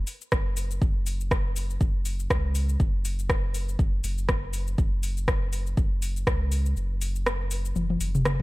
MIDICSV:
0, 0, Header, 1, 3, 480
1, 0, Start_track
1, 0, Tempo, 495868
1, 789, Time_signature, 4, 2, 24, 8
1, 8152, End_track
2, 0, Start_track
2, 0, Title_t, "Sub bass"
2, 0, Program_c, 0, 38
2, 309, Note_on_c, 0, 30, 96
2, 763, Note_off_c, 0, 30, 0
2, 789, Note_on_c, 0, 30, 95
2, 1723, Note_off_c, 0, 30, 0
2, 1749, Note_on_c, 0, 30, 88
2, 2203, Note_off_c, 0, 30, 0
2, 2229, Note_on_c, 0, 37, 97
2, 2683, Note_off_c, 0, 37, 0
2, 2709, Note_on_c, 0, 30, 97
2, 3643, Note_off_c, 0, 30, 0
2, 3670, Note_on_c, 0, 30, 100
2, 3877, Note_off_c, 0, 30, 0
2, 3908, Note_on_c, 0, 30, 109
2, 4603, Note_off_c, 0, 30, 0
2, 4630, Note_on_c, 0, 30, 101
2, 5563, Note_off_c, 0, 30, 0
2, 5589, Note_on_c, 0, 30, 93
2, 6043, Note_off_c, 0, 30, 0
2, 6069, Note_on_c, 0, 37, 98
2, 6523, Note_off_c, 0, 37, 0
2, 6549, Note_on_c, 0, 30, 102
2, 7483, Note_off_c, 0, 30, 0
2, 7506, Note_on_c, 0, 30, 104
2, 7715, Note_off_c, 0, 30, 0
2, 7748, Note_on_c, 0, 30, 109
2, 8152, Note_off_c, 0, 30, 0
2, 8152, End_track
3, 0, Start_track
3, 0, Title_t, "Drums"
3, 68, Note_on_c, 9, 46, 88
3, 68, Note_on_c, 9, 69, 98
3, 165, Note_off_c, 9, 46, 0
3, 165, Note_off_c, 9, 69, 0
3, 207, Note_on_c, 9, 69, 56
3, 303, Note_off_c, 9, 69, 0
3, 309, Note_on_c, 9, 37, 110
3, 309, Note_on_c, 9, 69, 40
3, 310, Note_on_c, 9, 36, 125
3, 406, Note_off_c, 9, 36, 0
3, 406, Note_off_c, 9, 37, 0
3, 406, Note_off_c, 9, 69, 0
3, 549, Note_on_c, 9, 46, 86
3, 549, Note_on_c, 9, 69, 98
3, 646, Note_off_c, 9, 46, 0
3, 646, Note_off_c, 9, 69, 0
3, 687, Note_on_c, 9, 69, 58
3, 783, Note_off_c, 9, 69, 0
3, 790, Note_on_c, 9, 36, 122
3, 792, Note_on_c, 9, 69, 39
3, 887, Note_off_c, 9, 36, 0
3, 889, Note_off_c, 9, 69, 0
3, 1031, Note_on_c, 9, 46, 85
3, 1031, Note_on_c, 9, 69, 91
3, 1128, Note_off_c, 9, 46, 0
3, 1128, Note_off_c, 9, 69, 0
3, 1169, Note_on_c, 9, 69, 51
3, 1265, Note_off_c, 9, 69, 0
3, 1270, Note_on_c, 9, 36, 127
3, 1271, Note_on_c, 9, 37, 99
3, 1271, Note_on_c, 9, 69, 41
3, 1367, Note_off_c, 9, 36, 0
3, 1368, Note_off_c, 9, 37, 0
3, 1368, Note_off_c, 9, 69, 0
3, 1512, Note_on_c, 9, 46, 85
3, 1513, Note_on_c, 9, 69, 90
3, 1609, Note_off_c, 9, 46, 0
3, 1609, Note_off_c, 9, 69, 0
3, 1648, Note_on_c, 9, 69, 51
3, 1745, Note_off_c, 9, 69, 0
3, 1750, Note_on_c, 9, 36, 119
3, 1750, Note_on_c, 9, 69, 39
3, 1847, Note_off_c, 9, 36, 0
3, 1847, Note_off_c, 9, 69, 0
3, 1988, Note_on_c, 9, 46, 88
3, 1988, Note_on_c, 9, 69, 90
3, 2084, Note_off_c, 9, 46, 0
3, 2085, Note_off_c, 9, 69, 0
3, 2125, Note_on_c, 9, 69, 55
3, 2222, Note_off_c, 9, 69, 0
3, 2230, Note_on_c, 9, 36, 116
3, 2231, Note_on_c, 9, 37, 101
3, 2231, Note_on_c, 9, 69, 41
3, 2327, Note_off_c, 9, 36, 0
3, 2328, Note_off_c, 9, 37, 0
3, 2328, Note_off_c, 9, 69, 0
3, 2469, Note_on_c, 9, 46, 92
3, 2469, Note_on_c, 9, 69, 91
3, 2566, Note_off_c, 9, 46, 0
3, 2566, Note_off_c, 9, 69, 0
3, 2605, Note_on_c, 9, 69, 53
3, 2702, Note_off_c, 9, 69, 0
3, 2710, Note_on_c, 9, 36, 122
3, 2711, Note_on_c, 9, 69, 36
3, 2807, Note_off_c, 9, 36, 0
3, 2807, Note_off_c, 9, 69, 0
3, 2952, Note_on_c, 9, 46, 86
3, 2952, Note_on_c, 9, 69, 89
3, 3048, Note_off_c, 9, 46, 0
3, 3049, Note_off_c, 9, 69, 0
3, 3089, Note_on_c, 9, 69, 50
3, 3186, Note_off_c, 9, 69, 0
3, 3190, Note_on_c, 9, 36, 121
3, 3190, Note_on_c, 9, 37, 105
3, 3191, Note_on_c, 9, 69, 38
3, 3287, Note_off_c, 9, 36, 0
3, 3287, Note_off_c, 9, 37, 0
3, 3287, Note_off_c, 9, 69, 0
3, 3431, Note_on_c, 9, 46, 86
3, 3431, Note_on_c, 9, 69, 85
3, 3528, Note_off_c, 9, 46, 0
3, 3528, Note_off_c, 9, 69, 0
3, 3569, Note_on_c, 9, 69, 50
3, 3666, Note_off_c, 9, 69, 0
3, 3670, Note_on_c, 9, 36, 117
3, 3673, Note_on_c, 9, 69, 38
3, 3767, Note_off_c, 9, 36, 0
3, 3770, Note_off_c, 9, 69, 0
3, 3910, Note_on_c, 9, 46, 93
3, 3910, Note_on_c, 9, 69, 94
3, 4007, Note_off_c, 9, 46, 0
3, 4007, Note_off_c, 9, 69, 0
3, 4047, Note_on_c, 9, 69, 53
3, 4144, Note_off_c, 9, 69, 0
3, 4149, Note_on_c, 9, 37, 99
3, 4149, Note_on_c, 9, 69, 37
3, 4150, Note_on_c, 9, 36, 119
3, 4246, Note_off_c, 9, 37, 0
3, 4246, Note_off_c, 9, 69, 0
3, 4247, Note_off_c, 9, 36, 0
3, 4388, Note_on_c, 9, 46, 89
3, 4388, Note_on_c, 9, 69, 92
3, 4485, Note_off_c, 9, 46, 0
3, 4485, Note_off_c, 9, 69, 0
3, 4526, Note_on_c, 9, 69, 51
3, 4622, Note_off_c, 9, 69, 0
3, 4629, Note_on_c, 9, 69, 37
3, 4630, Note_on_c, 9, 36, 116
3, 4726, Note_off_c, 9, 69, 0
3, 4727, Note_off_c, 9, 36, 0
3, 4870, Note_on_c, 9, 46, 91
3, 4870, Note_on_c, 9, 69, 88
3, 4967, Note_off_c, 9, 46, 0
3, 4967, Note_off_c, 9, 69, 0
3, 5007, Note_on_c, 9, 69, 51
3, 5104, Note_off_c, 9, 69, 0
3, 5110, Note_on_c, 9, 36, 118
3, 5110, Note_on_c, 9, 37, 105
3, 5110, Note_on_c, 9, 69, 37
3, 5207, Note_off_c, 9, 36, 0
3, 5207, Note_off_c, 9, 37, 0
3, 5207, Note_off_c, 9, 69, 0
3, 5350, Note_on_c, 9, 46, 90
3, 5350, Note_on_c, 9, 69, 87
3, 5446, Note_off_c, 9, 46, 0
3, 5447, Note_off_c, 9, 69, 0
3, 5486, Note_on_c, 9, 69, 50
3, 5583, Note_off_c, 9, 69, 0
3, 5589, Note_on_c, 9, 36, 112
3, 5590, Note_on_c, 9, 69, 40
3, 5686, Note_off_c, 9, 36, 0
3, 5687, Note_off_c, 9, 69, 0
3, 5829, Note_on_c, 9, 46, 96
3, 5829, Note_on_c, 9, 69, 90
3, 5926, Note_off_c, 9, 46, 0
3, 5926, Note_off_c, 9, 69, 0
3, 5968, Note_on_c, 9, 69, 51
3, 6065, Note_off_c, 9, 69, 0
3, 6069, Note_on_c, 9, 36, 117
3, 6070, Note_on_c, 9, 37, 105
3, 6070, Note_on_c, 9, 69, 37
3, 6166, Note_off_c, 9, 36, 0
3, 6167, Note_off_c, 9, 37, 0
3, 6167, Note_off_c, 9, 69, 0
3, 6309, Note_on_c, 9, 46, 95
3, 6309, Note_on_c, 9, 69, 90
3, 6405, Note_off_c, 9, 46, 0
3, 6406, Note_off_c, 9, 69, 0
3, 6446, Note_on_c, 9, 69, 51
3, 6543, Note_off_c, 9, 69, 0
3, 6550, Note_on_c, 9, 69, 37
3, 6647, Note_off_c, 9, 69, 0
3, 6790, Note_on_c, 9, 46, 89
3, 6790, Note_on_c, 9, 69, 88
3, 6887, Note_off_c, 9, 46, 0
3, 6887, Note_off_c, 9, 69, 0
3, 6928, Note_on_c, 9, 69, 51
3, 7025, Note_off_c, 9, 69, 0
3, 7032, Note_on_c, 9, 37, 109
3, 7032, Note_on_c, 9, 69, 39
3, 7129, Note_off_c, 9, 37, 0
3, 7129, Note_off_c, 9, 69, 0
3, 7269, Note_on_c, 9, 46, 96
3, 7269, Note_on_c, 9, 69, 90
3, 7366, Note_off_c, 9, 46, 0
3, 7366, Note_off_c, 9, 69, 0
3, 7407, Note_on_c, 9, 69, 51
3, 7504, Note_off_c, 9, 69, 0
3, 7509, Note_on_c, 9, 48, 62
3, 7509, Note_on_c, 9, 69, 39
3, 7606, Note_off_c, 9, 48, 0
3, 7606, Note_off_c, 9, 69, 0
3, 7647, Note_on_c, 9, 48, 57
3, 7744, Note_off_c, 9, 48, 0
3, 7750, Note_on_c, 9, 46, 96
3, 7750, Note_on_c, 9, 69, 91
3, 7847, Note_off_c, 9, 46, 0
3, 7847, Note_off_c, 9, 69, 0
3, 7888, Note_on_c, 9, 47, 70
3, 7888, Note_on_c, 9, 69, 54
3, 7985, Note_off_c, 9, 47, 0
3, 7985, Note_off_c, 9, 69, 0
3, 7990, Note_on_c, 9, 37, 108
3, 7990, Note_on_c, 9, 47, 91
3, 7990, Note_on_c, 9, 69, 40
3, 8087, Note_off_c, 9, 37, 0
3, 8087, Note_off_c, 9, 47, 0
3, 8087, Note_off_c, 9, 69, 0
3, 8152, End_track
0, 0, End_of_file